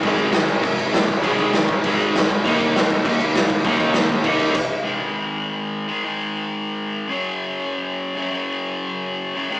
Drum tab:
CC |xxxxxxxx|xxxxxxxx|xxxxxxxx|xxxxxxx-|
SD |--o---o-|--o---o-|--o---o-|--o-----|
BD |oo-oo--o|oo-oo--o|oo-oo--o|oo-oo-o-|

CC |--------|--------|--------|--------|
SD |--------|--------|--------|--------|
BD |--------|--------|--------|--------|